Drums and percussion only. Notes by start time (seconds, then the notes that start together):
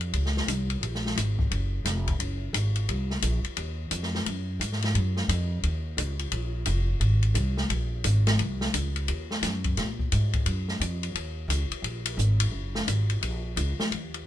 0.01 ride
0.13 ride
0.26 snare
0.37 snare
0.48 hi-hat pedal, ride
0.70 ride
0.83 ride
0.95 snare
1.06 snare
1.17 hi-hat pedal, ride
1.39 kick
1.51 ride
1.85 snare, hi-hat pedal, ride
2.07 kick, ride
2.20 ride
2.54 hi-hat pedal, ride
2.76 ride
2.89 ride
3.10 snare
3.22 hi-hat pedal, ride
3.44 ride
3.57 ride
3.91 hi-hat pedal, ride
4.03 snare
4.15 snare
4.26 ride
4.61 hi-hat pedal, ride
4.72 snare
4.82 snare, ride
4.95 ride
5.16 snare
5.29 hi-hat pedal, ride
5.63 ride
5.98 hi-hat pedal, ride
6.19 ride
6.32 ride
6.66 hi-hat pedal, ride
7.01 ride
7.23 ride
7.35 hi-hat pedal, ride
7.57 snare
7.70 ride
8.04 hi-hat pedal, ride
8.27 snare, ride
8.39 ride
8.61 snare
8.74 hi-hat pedal, ride
8.96 ride
9.08 ride
9.31 snare
9.43 snare, hi-hat pedal, ride
9.64 kick, ride
9.77 snare, ride
9.99 kick
10.12 hi-hat pedal, ride
10.33 kick, ride
10.46 ride
10.68 snare
10.81 hi-hat pedal, ride
11.03 ride
11.15 ride
11.50 hi-hat pedal, ride
11.72 ride
11.84 ride
12.06 ride
12.19 hi-hat pedal
12.40 ride
12.75 snare
12.88 hi-hat pedal, ride
13.10 ride
13.23 ride
13.57 hi-hat pedal, ride
13.79 snare
13.92 ride
14.14 ride